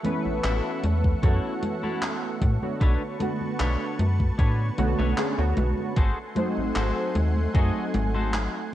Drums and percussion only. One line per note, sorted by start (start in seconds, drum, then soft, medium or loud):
0.05 closed hi-hat medium
0.05 high conga medium
0.25 high conga soft
0.44 clap loud
0.44 closed hi-hat medium
0.44 high conga soft
0.84 closed hi-hat medium
0.84 high conga medium
1.04 kick medium
1.04 high conga soft
1.23 kick loud
1.23 closed hi-hat medium
1.23 high conga soft
1.63 closed hi-hat medium
1.63 high conga medium
1.83 high conga soft
2.02 clap loud
2.02 closed hi-hat medium
2.02 high conga soft
2.41 kick loud
2.41 closed hi-hat medium
2.41 high conga medium
2.62 high conga soft
2.81 kick loud
2.81 closed hi-hat medium
2.81 high conga soft
3.20 closed hi-hat medium
3.20 high conga medium
3.41 high conga soft
3.60 clap loud
3.60 closed hi-hat medium
3.60 high conga soft
3.99 closed hi-hat medium
3.99 high conga medium
4.20 kick medium
4.20 high conga soft
4.39 kick loud
4.39 closed hi-hat medium
4.39 high conga soft
4.78 closed hi-hat medium
4.78 high conga medium
4.99 high conga soft
5.18 clap loud
5.18 closed hi-hat medium
5.18 high conga soft
5.57 closed hi-hat medium
5.57 high conga medium
5.78 high conga soft
5.96 kick loud
5.96 closed hi-hat medium
5.96 high conga soft
6.36 closed hi-hat medium
6.36 high conga medium
6.57 high conga soft
6.75 clap loud
6.75 closed hi-hat medium
6.75 high conga soft
7.15 closed hi-hat medium
7.15 high conga medium
7.36 high conga soft
7.55 kick loud
7.55 closed hi-hat medium
7.55 high conga soft
7.94 closed hi-hat medium
7.94 high conga medium
8.15 high conga soft
8.34 clap loud
8.34 closed hi-hat medium
8.34 high conga soft